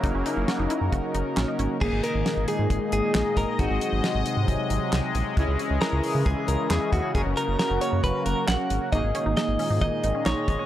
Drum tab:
CC |--------|x-------|--------|--------|
HH |xxxxxxxx|-xxxxxxx|xxxxxxxx|xxxoxxxx|
CP |------x-|------x-|------x-|------x-|
SD |--o---o-|--o---o-|--o---o-|--o---o-|
BD |o---o---|o---o--o|o---o---|o---o--o|

CC |--------|--------|
HH |xxxxxxxx|xxxoxxxx|
CP |------x-|------x-|
SD |--o---o-|--o---o-|
BD |o---o---|o---o--o|